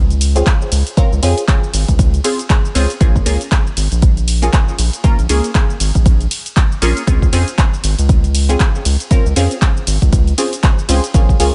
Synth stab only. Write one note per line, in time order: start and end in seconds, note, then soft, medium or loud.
0.35 0.94 C4 medium
0.35 0.95 C#4 medium
0.35 0.95 F4 medium
0.35 0.95 G#4 medium
0.97 1.12 C4 loud
0.97 1.12 C#4 medium
0.97 1.12 F4 medium
0.97 1.12 A#4 loud
1.22 1.43 C4 medium
1.22 1.43 C#4 medium
1.22 1.44 F4 medium
1.22 1.44 G#4 loud
2.24 2.39 C4 medium
2.24 2.39 C#4 medium
2.24 2.39 F4 medium
2.24 2.39 G#4 medium
2.75 2.90 C4 medium
2.75 2.90 C#4 medium
2.75 2.90 F4 medium
2.75 2.90 G#4 loud
3.00 3.23 A#3 medium
3.00 3.24 C#4 medium
3.00 3.24 F4 medium
3.00 3.24 G#4 medium
3.26 3.40 A#3 medium
3.26 3.41 C#4 medium
3.26 3.41 F4 medium
3.26 3.41 G#4 medium
4.42 5.01 A#3 medium
4.42 5.01 C#4 medium
4.42 5.02 F4 medium
4.42 5.02 G#4 medium
5.04 5.18 A#3 loud
5.04 5.18 C#4 medium
5.04 5.19 F4 medium
5.04 5.19 A#4 loud
5.29 5.50 A#3 medium
5.29 5.50 C#4 medium
5.29 5.50 F4 medium
5.29 5.50 G#4 medium
6.82 7.03 A#3 loud
6.82 7.03 C#4 medium
6.82 7.03 F4 medium
6.82 7.03 G#4 loud
7.07 7.30 C4 medium
7.07 7.30 C#4 medium
7.07 7.30 F4 medium
7.07 7.30 G#4 medium
7.33 7.47 C4 medium
7.33 7.47 C#4 medium
7.33 7.47 F4 medium
7.33 7.47 G#4 medium
8.49 9.08 C4 medium
8.49 9.08 C#4 medium
8.49 9.08 F4 medium
8.49 9.09 G#4 medium
9.11 9.25 C4 medium
9.11 9.25 C#4 medium
9.11 9.25 F4 medium
9.11 9.25 A#4 loud
9.36 9.57 C4 medium
9.36 9.57 C#4 medium
9.36 9.57 F4 medium
9.36 9.57 G#4 loud
10.38 10.52 C4 medium
10.38 10.52 C#4 medium
10.38 10.53 F4 medium
10.38 10.53 G#4 medium
10.89 11.03 C4 medium
10.89 11.03 C#4 medium
10.89 11.03 F4 medium
10.89 11.03 G#4 loud
11.14 11.37 A#3 medium
11.14 11.37 C#4 medium
11.14 11.37 F4 medium
11.14 11.37 G#4 medium
11.39 11.54 A#3 medium
11.39 11.54 C#4 medium
11.39 11.54 F4 medium
11.39 11.54 G#4 loud